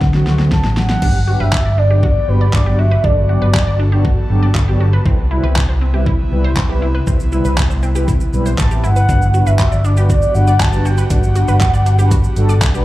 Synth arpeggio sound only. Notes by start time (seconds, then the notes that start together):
1.02 D4
1.27 F#4
1.40 B4
1.53 G4
1.65 D5
1.78 D4
1.90 G4
2.03 F#4
2.41 D5
2.53 D4
2.66 G4
2.79 F#4
2.91 B4
3.04 D4
3.29 F#4
3.42 B4
3.54 G4
3.67 D5
3.80 D4
3.92 G4
4.05 F#4
4.43 D5
4.55 D4
4.68 G4
4.80 F#4
4.93 B4
5.06 C4
5.31 E4
5.43 B4
5.56 G4
5.69 C5
5.81 C4
5.94 G4
6.06 E4
6.44 C5
6.57 C4
6.69 G4
6.82 E4
6.95 B4
7.07 C4
7.32 E4
7.45 B4
7.57 G4
7.70 C5
7.83 C4
7.95 G4
8.08 E4
8.46 C5
8.58 C4
8.71 G4
8.84 E4
8.96 B4
9.09 D4
9.34 F#4
9.47 B4
9.59 G4
9.72 D5
9.85 D4
9.97 G4
10.10 F#4
10.47 D5
10.60 D4
10.73 G4
10.85 F#4
10.98 B4
11.10 D4
11.36 F#4
11.48 B4
11.61 G4
11.73 D5
11.86 D4
11.99 G4
12.11 F#4
12.49 D5
12.62 D4
12.74 G4